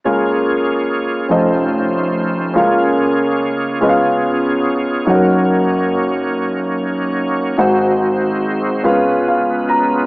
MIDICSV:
0, 0, Header, 1, 3, 480
1, 0, Start_track
1, 0, Key_signature, -5, "major"
1, 0, Tempo, 839513
1, 26, Time_signature, 6, 3, 24, 8
1, 5754, End_track
2, 0, Start_track
2, 0, Title_t, "Upright piano"
2, 0, Program_c, 0, 0
2, 29, Note_on_c, 0, 61, 39
2, 31, Note_on_c, 0, 49, 37
2, 32, Note_on_c, 0, 65, 35
2, 33, Note_on_c, 0, 68, 44
2, 35, Note_on_c, 0, 37, 43
2, 37, Note_on_c, 0, 70, 39
2, 38, Note_on_c, 0, 77, 47
2, 130, Control_c, 0, 64, 127
2, 726, Note_off_c, 0, 49, 0
2, 728, Note_off_c, 0, 37, 0
2, 728, Note_off_c, 0, 61, 0
2, 732, Note_off_c, 0, 65, 0
2, 737, Note_on_c, 0, 61, 43
2, 741, Note_on_c, 0, 65, 40
2, 742, Note_on_c, 0, 29, 42
2, 744, Note_on_c, 0, 41, 44
2, 747, Note_on_c, 0, 69, 40
2, 748, Note_on_c, 0, 72, 40
2, 749, Note_off_c, 0, 68, 0
2, 750, Note_on_c, 0, 75, 50
2, 751, Note_off_c, 0, 70, 0
2, 752, Note_off_c, 0, 77, 0
2, 753, Control_c, 0, 64, 0
2, 861, Control_c, 0, 64, 127
2, 1441, Note_off_c, 0, 29, 0
2, 1442, Note_off_c, 0, 41, 0
2, 1442, Note_off_c, 0, 61, 0
2, 1448, Note_off_c, 0, 65, 0
2, 1450, Note_on_c, 0, 61, 45
2, 1457, Note_on_c, 0, 37, 44
2, 1457, Note_on_c, 0, 65, 45
2, 1458, Note_on_c, 0, 68, 40
2, 1460, Note_on_c, 0, 49, 41
2, 1461, Note_on_c, 0, 70, 39
2, 1463, Note_on_c, 0, 77, 50
2, 1467, Note_off_c, 0, 69, 0
2, 1467, Note_off_c, 0, 72, 0
2, 1468, Note_off_c, 0, 75, 0
2, 1472, Control_c, 0, 64, 0
2, 1575, Control_c, 0, 64, 127
2, 2159, Note_off_c, 0, 37, 0
2, 2160, Note_off_c, 0, 49, 0
2, 2168, Note_off_c, 0, 61, 0
2, 2172, Note_off_c, 0, 65, 0
2, 2173, Note_off_c, 0, 68, 0
2, 2177, Note_on_c, 0, 61, 46
2, 2181, Note_on_c, 0, 49, 46
2, 2181, Note_on_c, 0, 65, 40
2, 2181, Note_on_c, 0, 68, 45
2, 2183, Note_off_c, 0, 70, 0
2, 2183, Note_on_c, 0, 37, 46
2, 2184, Note_off_c, 0, 77, 0
2, 2187, Note_on_c, 0, 71, 43
2, 2188, Note_on_c, 0, 75, 42
2, 2193, Control_c, 0, 64, 0
2, 2225, Note_off_c, 0, 75, 0
2, 2225, Note_on_c, 0, 77, 55
2, 2280, Control_c, 0, 64, 127
2, 2881, Note_off_c, 0, 49, 0
2, 2882, Note_off_c, 0, 37, 0
2, 2888, Note_on_c, 0, 63, 41
2, 2897, Note_on_c, 0, 66, 42
2, 2898, Note_on_c, 0, 42, 46
2, 2899, Note_on_c, 0, 30, 51
2, 2901, Note_on_c, 0, 69, 34
2, 2902, Note_off_c, 0, 61, 0
2, 2904, Note_off_c, 0, 65, 0
2, 2904, Note_off_c, 0, 68, 0
2, 2906, Note_off_c, 0, 71, 0
2, 2909, Note_on_c, 0, 73, 43
2, 2913, Note_on_c, 0, 78, 50
2, 2914, Control_c, 0, 64, 0
2, 2926, Note_off_c, 0, 77, 0
2, 2938, Note_on_c, 0, 70, 44
2, 2941, Note_off_c, 0, 69, 0
2, 3005, Control_c, 0, 64, 127
2, 4314, Note_off_c, 0, 63, 0
2, 4318, Note_off_c, 0, 66, 0
2, 4319, Note_off_c, 0, 42, 0
2, 4320, Note_off_c, 0, 30, 0
2, 4325, Note_off_c, 0, 73, 0
2, 4327, Note_off_c, 0, 78, 0
2, 4330, Note_on_c, 0, 63, 50
2, 4332, Note_on_c, 0, 66, 44
2, 4336, Note_on_c, 0, 44, 51
2, 4336, Note_on_c, 0, 68, 45
2, 4338, Note_on_c, 0, 32, 43
2, 4338, Note_on_c, 0, 72, 44
2, 4339, Note_off_c, 0, 70, 0
2, 4339, Note_on_c, 0, 78, 52
2, 4354, Control_c, 0, 64, 0
2, 4443, Control_c, 0, 64, 127
2, 5038, Note_off_c, 0, 44, 0
2, 5039, Note_off_c, 0, 32, 0
2, 5049, Note_off_c, 0, 68, 0
2, 5052, Note_on_c, 0, 61, 53
2, 5055, Note_on_c, 0, 65, 44
2, 5056, Note_on_c, 0, 49, 44
2, 5058, Note_off_c, 0, 63, 0
2, 5058, Note_on_c, 0, 37, 46
2, 5058, Note_on_c, 0, 68, 49
2, 5059, Note_off_c, 0, 66, 0
2, 5059, Note_on_c, 0, 71, 50
2, 5062, Note_off_c, 0, 72, 0
2, 5062, Note_off_c, 0, 78, 0
2, 5062, Note_on_c, 0, 77, 58
2, 5073, Control_c, 0, 64, 0
2, 5185, Control_c, 0, 64, 127
2, 5298, Note_off_c, 0, 77, 0
2, 5307, Note_on_c, 0, 77, 48
2, 5529, Note_off_c, 0, 77, 0
2, 5540, Note_on_c, 0, 82, 48
2, 5754, Note_off_c, 0, 37, 0
2, 5754, Note_off_c, 0, 49, 0
2, 5754, Note_off_c, 0, 61, 0
2, 5754, Note_off_c, 0, 65, 0
2, 5754, Note_off_c, 0, 68, 0
2, 5754, Note_off_c, 0, 71, 0
2, 5754, Note_off_c, 0, 82, 0
2, 5754, End_track
3, 0, Start_track
3, 0, Title_t, "Tonewheel organ"
3, 0, Program_c, 1, 16
3, 26, Note_on_c, 1, 65, 34
3, 30, Note_on_c, 1, 58, 39
3, 30, Note_on_c, 1, 61, 33
3, 32, Note_on_c, 1, 73, 49
3, 33, Note_on_c, 1, 68, 37
3, 741, Note_off_c, 1, 58, 0
3, 742, Note_off_c, 1, 68, 0
3, 742, Note_off_c, 1, 73, 0
3, 748, Note_on_c, 1, 57, 41
3, 753, Note_on_c, 1, 72, 45
3, 755, Note_on_c, 1, 63, 35
3, 1460, Note_off_c, 1, 57, 0
3, 1462, Note_off_c, 1, 72, 0
3, 1463, Note_off_c, 1, 63, 0
3, 1473, Note_on_c, 1, 58, 38
3, 1474, Note_on_c, 1, 73, 42
3, 1476, Note_on_c, 1, 68, 38
3, 1477, Note_on_c, 1, 49, 45
3, 2166, Note_off_c, 1, 61, 0
3, 2182, Note_off_c, 1, 58, 0
3, 2185, Note_off_c, 1, 49, 0
3, 2198, Note_on_c, 1, 59, 39
3, 2198, Note_on_c, 1, 61, 37
3, 2883, Note_off_c, 1, 65, 0
3, 2897, Note_off_c, 1, 68, 0
3, 2898, Note_on_c, 1, 58, 40
3, 2901, Note_on_c, 1, 66, 41
3, 2904, Note_on_c, 1, 63, 45
3, 2905, Note_off_c, 1, 59, 0
3, 4327, Note_off_c, 1, 73, 0
3, 4328, Note_off_c, 1, 58, 0
3, 4329, Note_off_c, 1, 66, 0
3, 4330, Note_off_c, 1, 61, 0
3, 4330, Note_off_c, 1, 63, 0
3, 4351, Note_on_c, 1, 66, 43
3, 4351, Note_on_c, 1, 72, 53
3, 4352, Note_on_c, 1, 56, 48
3, 4353, Note_on_c, 1, 63, 42
3, 4355, Note_on_c, 1, 60, 42
3, 5061, Note_off_c, 1, 66, 0
3, 5061, Note_off_c, 1, 72, 0
3, 5062, Note_off_c, 1, 63, 0
3, 5063, Note_off_c, 1, 60, 0
3, 5078, Note_on_c, 1, 59, 42
3, 5079, Note_on_c, 1, 61, 42
3, 5079, Note_on_c, 1, 65, 39
3, 5081, Note_on_c, 1, 71, 46
3, 5754, Note_off_c, 1, 56, 0
3, 5754, Note_off_c, 1, 59, 0
3, 5754, Note_off_c, 1, 61, 0
3, 5754, Note_off_c, 1, 65, 0
3, 5754, Note_off_c, 1, 71, 0
3, 5754, End_track
0, 0, End_of_file